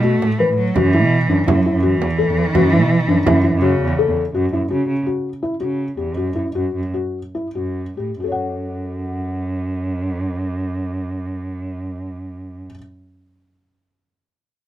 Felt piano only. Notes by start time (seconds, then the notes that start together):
0.04 F#4
0.40 B4
0.76 F#4
0.94 E4
1.30 D4
1.48 E4
1.66 E4
1.83 F#4
2.19 A4
2.55 F#4
2.73 E4
3.08 D4
3.26 E4
3.44 E4
3.62 F#4
3.99 A4
4.34 F#4
4.53 E4
4.71 F#4
5.06 F#4
5.43 E4
5.60 F#4
5.97 G4
6.17 F#4
6.36 E4
6.55 F#4
6.94 F#4
7.35 E4
7.55 F#4
7.97 G4
8.20 F#4 A4
8.28 C#5
8.32 F#5